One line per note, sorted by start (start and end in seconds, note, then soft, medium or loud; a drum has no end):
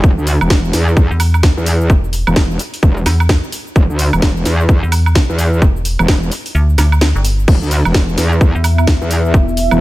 0.04 0.16 E1 loud
0.04 kick loud
0.04 cabasa soft
0.18 0.39 D2 loud
0.18 cabasa soft
0.27 open hi-hat loud
0.27 cabasa medium
0.41 0.72 E1 medium
0.41 cabasa soft
0.41 high woodblock medium
0.50 kick loud
0.50 snare loud
0.50 cabasa soft
0.65 cabasa soft
0.73 1.09 E2 loud
0.73 snare medium
0.73 open hi-hat loud
0.73 cabasa medium
0.88 cabasa soft
0.97 kick loud
0.97 cabasa soft
1.11 1.55 E2 loud
1.11 cabasa soft
1.20 open hi-hat loud
1.20 cabasa medium
1.20 high woodblock medium
1.34 cabasa soft
1.34 high woodblock medium
1.43 kick loud
1.43 snare loud
1.43 cabasa soft
1.57 1.88 E2 loud
1.57 cabasa soft
1.66 open hi-hat loud
1.66 cabasa medium
1.81 cabasa soft
1.90 2.25 E1 loud
1.90 kick loud
1.90 cabasa soft
2.04 cabasa soft
2.13 open hi-hat loud
2.13 cabasa medium
2.27 2.58 E1 loud
2.27 cabasa soft
2.27 high woodblock medium
2.36 kick loud
2.36 snare loud
2.36 cabasa soft
2.51 cabasa soft
2.59 open hi-hat loud
2.59 cabasa medium
2.74 open hi-hat medium
2.74 cabasa soft
2.83 3.05 E1 loud
2.83 kick loud
2.83 cabasa soft
2.97 cabasa soft
3.06 3.41 E2 loud
3.06 snare medium
3.06 open hi-hat loud
3.06 cabasa medium
3.06 high woodblock medium
3.20 cabasa soft
3.20 high woodblock medium
3.29 kick loud
3.29 snare loud
3.29 cabasa soft
3.44 cabasa soft
3.52 open hi-hat loud
3.52 cabasa medium
3.67 cabasa soft
3.76 3.88 E1 loud
3.76 kick loud
3.76 cabasa soft
3.90 4.11 D2 loud
3.90 cabasa soft
3.99 open hi-hat loud
3.99 cabasa medium
4.13 4.44 E1 medium
4.13 cabasa soft
4.13 high woodblock medium
4.22 kick loud
4.22 snare loud
4.22 cabasa soft
4.37 cabasa soft
4.45 4.81 E2 loud
4.45 snare medium
4.45 open hi-hat loud
4.45 cabasa medium
4.60 cabasa soft
4.69 kick loud
4.69 cabasa soft
4.83 5.27 E2 loud
4.83 cabasa soft
4.92 open hi-hat loud
4.92 cabasa medium
4.92 high woodblock medium
5.06 cabasa soft
5.06 high woodblock medium
5.15 kick loud
5.15 snare loud
5.15 cabasa soft
5.29 5.60 E2 loud
5.29 cabasa soft
5.39 open hi-hat loud
5.39 cabasa medium
5.53 cabasa soft
5.62 5.97 E1 loud
5.62 kick loud
5.62 cabasa soft
5.76 cabasa soft
5.85 open hi-hat loud
5.85 cabasa medium
5.99 6.30 E1 loud
5.99 cabasa soft
5.99 high woodblock medium
6.08 kick loud
6.08 snare loud
6.08 cabasa soft
6.23 cabasa soft
6.32 open hi-hat loud
6.32 cabasa medium
6.46 open hi-hat medium
6.46 cabasa soft
6.55 6.77 D2 loud
6.55 cabasa soft
6.69 cabasa soft
6.78 7.13 D2 loud
6.78 snare medium
6.78 open hi-hat loud
6.78 cabasa medium
6.78 high woodblock medium
6.92 cabasa soft
6.92 high woodblock medium
7.01 snare loud
7.01 cabasa soft
7.15 7.46 G1 medium
7.15 cabasa soft
7.25 open hi-hat loud
7.25 cabasa medium
7.39 cabasa soft
7.48 7.60 E1 loud
7.48 9.81 B3 medium
7.48 9.81 E4 medium
7.48 9.81 E5 loud
7.48 kick loud
7.48 crash medium
7.48 cabasa soft
7.62 7.83 D2 loud
7.62 cabasa soft
7.71 open hi-hat loud
7.71 cabasa medium
7.85 8.16 E1 loud
7.85 cabasa soft
7.85 high woodblock medium
7.94 kick loud
7.94 snare loud
7.94 cabasa soft
8.09 cabasa soft
8.18 8.53 E2 loud
8.18 snare medium
8.18 open hi-hat loud
8.18 cabasa medium
8.32 cabasa soft
8.41 kick loud
8.41 cabasa soft
8.55 8.99 E2 medium
8.55 cabasa soft
8.64 open hi-hat loud
8.64 cabasa medium
8.64 high woodblock medium
8.78 cabasa soft
8.78 high woodblock medium
8.87 kick loud
8.87 snare loud
8.87 cabasa soft
9.02 9.32 E2 loud
9.02 cabasa soft
9.11 open hi-hat loud
9.11 cabasa medium
9.25 cabasa soft
9.34 9.69 E1 loud
9.34 kick loud
9.34 cabasa soft
9.49 cabasa soft
9.57 open hi-hat loud
9.57 cabasa medium
9.71 9.81 E1 loud
9.71 cabasa soft
9.71 high woodblock medium